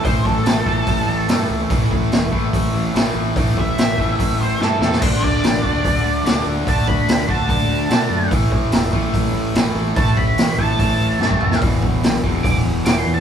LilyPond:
<<
  \new Staff \with { instrumentName = "Lead electric guitar" } { \time 4/4 \key d \major \tempo 4 = 145 c''8 a'2. r8 | r1 | r8 e''2 c''8 a'8 a'8 | c''8 d''2. r8 |
a''8 b''4 a''8 a''2 | r1 | a''8 b''4 a''8 a''2 | r2 d'''8 r8 \tuplet 3/2 { d'''8 c'''8 a''8 } | }
  \new Staff \with { instrumentName = "Overdriven electric guitar" } { \clef bass \time 4/4 \key d \major <a, e a>4. <a, e a>4. <a, e a>4 | <a, e a>4. <a, e a>4. <a, e a>4 | <a, e a>4. <a, e a>4. <a, e a>4 | <d a d'>4. <d a d'>4. <d a d'>4 |
<d a d'>4. <d a d'>4. <d a d'>4 | <a, e a>4. <a, e a>4. <a, e a>4 | <a, e a>4. <a, e a>4. <a, e a>4 | <e, b, e>4. <e, b, e>4. <e, b, e>4 | }
  \new Staff \with { instrumentName = "Fingered electric bass" } { \clef bass \time 4/4 \key d \major a,,8 a,,8 a,,8 a,,8 a,,8 a,,8 g,8 cis,8 | a,,8 a,,8 e,,8 a,,8 a,,8 a,,8 a,,8 a,,8 | a,,8 a,,8 a,,8 a,,8 a,,8 a,,8 g,8 e,8 | d,8 d,8 a,,8 d,8 d,8 d,8 d,8 d,8 |
d,8 d,8 d,8 d,8 d,8 d,8 b,8 fis,8 | a,,8 a,,8 e,,8 a,,8 a,,8 a,,8 a,,8 a,,8 | a,,8 a,,8 a,,8 a,,8 a,,8 a,,8 g,8 cis,8 | e,,8 e,,8 b,,8 e,,8 e,,8 e,,8 e,,8 e,8 | }
  \new DrumStaff \with { instrumentName = "Drums" } \drummode { \time 4/4 <hho bd>8 bd8 <hho sn>8 bd8 <hho bd>4 <hho sn>4 | <hho bd>8 bd8 <hho sn>8 bd8 <hho bd>4 <hho sn>4 | <hho bd>8 bd8 <hho sn>8 bd8 <hho bd>4 sn8 sn16 sn16 | <cymc hho bd>8 bd8 <hho sn>8 bd8 <hho bd>4 <hho sn>4 |
<hho bd>8 bd8 <hho sn>8 bd8 <hho bd>4 <hho sn>4 | <hho bd>8 bd8 <hho sn>8 bd8 <hho bd>4 <hho sn>4 | <hho bd>8 bd8 <hho sn>8 bd8 <hho bd>4 sn16 bd16 toml16 sn16 | <hho bd>8 bd8 <hho sn>8 bd8 <hho bd>4 <hho sn>4 | }
>>